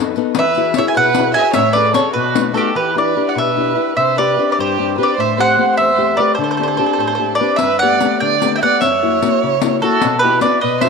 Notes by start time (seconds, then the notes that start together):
Already playing: F#2
0.00 B3 D#4 A4
0.16 B3 D#4 A4, riq
0.35 E3 B4, riq
0.39 E5
0.55 E4 F#4 G#4, riq
0.74 C#5, riq
0.78 E4 F#4 G#4 E5
0.88 E5 G#5
0.94 B2 B4 F#5, riq
1.14 E4 F#4 G#4, riq
1.34 E4 F#4 G#4 E5 G#5, riq
1.53 A2 C#5 E5, riq
1.73 C#4 G#4 A4 B4 D5, riq
1.94 C#4 G#4 A4 C#5, riq
2.13 B2 F#4 B4
2.35 A3 B3 D#4, riq
2.53 A3 B3 D#4 F#4 G4 A4, riq
2.75 E3 G4 B4
2.95 D4 E4 G4 B4 D5
3.16 D4 E4 G4
3.29 D5 F#5
3.35 B2 B4 E5
3.56 D4 E4 G4
3.76 D4 E4 G4
3.97 C3 C5 E5
4.18 C4 D4 G4 B4 D5
4.38 C4 D4 G4
4.51 B4 D5
4.58 G2 G4 C5
4.78 C4 D4 G4
4.98 C4 D4 G4 B4
5.03 D5
5.17 A2 C5 E5
5.37 A3 C4 G4 C5 F#5
5.58 A3 C4 G4
5.76 E2 C5 E5
5.97 A3 C4 G4
6.17 A3 C4 G4 B4 D5
6.35 D3 C5
6.39 A4
6.44 C5
6.51 C5
6.57 C4 D4 G4 C5
6.63 C5
6.68 C5
6.77 C4 D4 G4 C5
6.86 C5
6.93 C5
6.98 A2 C5
7.07 C5
7.15 D4 C5
7.19 C4 G4
7.35 D5
7.40 C4 D4 G4 B4
7.56 E5, riq
7.60 G2 B4
7.79 A3 B3 G4 D5 F#5
8.01 A3 B3 G4, riq
8.20 D3 D5 G5
8.42 A3 B3 G4, riq
8.56 E5 G5
8.62 A3 B3 G4 D5 F#5, riq
8.81 F#2 C#5 E5, riq
9.02 A#3 E4 F#4
9.22 A#3 E4 F#4, riq
9.43 C#3
9.62 A#3 E4 F#4, riq
9.82 A#3 E4 F#4 A4, riq
10.01 B2, riq
10.19 G4 B4
10.24 B3 E4 F#4
10.41 B3 E4 F#4 B4 D5, riq
10.61 B2 B4 D#5
10.81 B3 D#4 F#4 C5 E5, riq